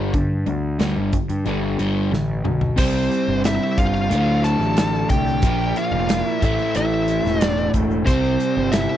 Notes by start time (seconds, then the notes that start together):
Already playing: G1 G2 D3 G3
0.13 G2 D3, kick, closed hi-hat
0.46 D2 G2 D3, closed hi-hat
0.79 D2 G2 D3 G3, snare, closed hi-hat
0.97 G1
1.13 G2 D3, kick, closed hi-hat
1.29 G2, closed hi-hat
1.46 G1 G2 D3 G3, closed hi-hat
1.79 G1 G2 D3 G3, closed hi-hat
2.12 A1 G2 D3, snare
2.44 B1 G2 D3, mid tom
2.61 floor tom
2.76 C2 C3 G3 C4 G4 C5, kick, crash, shaker
2.96 shaker
3.11 closed hi-hat, shaker
3.28 G1
3.44 E4 E5, snare, closed hi-hat, shaker
3.78 G1 F4 F5, kick, closed hi-hat, shaker
3.96 shaker
4.09 D2 A2 D3 D4 F4 A4 D5, closed hi-hat, shaker
4.44 A4 A5, closed hi-hat, shaker
4.59 A1, shaker
4.77 snare, closed hi-hat, shaker
4.94 shaker
5.09 C2 G4 G5, kick, closed hi-hat, shaker
5.28 shaker
5.42 A#1 A#2 F3 A#3 D4 F4 A#4 D5, kick, closed hi-hat, shaker
5.61 shaker
5.76 F4 F5, closed hi-hat
5.92 F1
6.09 snare, closed hi-hat, shaker
6.20 E4
6.25 E5
6.40 A1 A2 E3 A3 C4 E4 A4 C5, kick, closed hi-hat, shaker
6.45 E5
6.58 shaker
6.75 A1 E4 E5, closed hi-hat, shaker
7.08 closed hi-hat, shaker
7.25 E1, snare, shaker
7.41 D4 D5, snare, closed hi-hat, shaker
7.57 shaker
7.74 E1, kick, closed hi-hat, shaker
7.91 shaker
8.05 C2 C3 G3 C4 E4 G4 C5, kick, closed hi-hat, shaker
8.24 shaker
8.40 closed hi-hat, shaker
8.57 G1
8.72 E4 E5, snare, closed hi-hat, shaker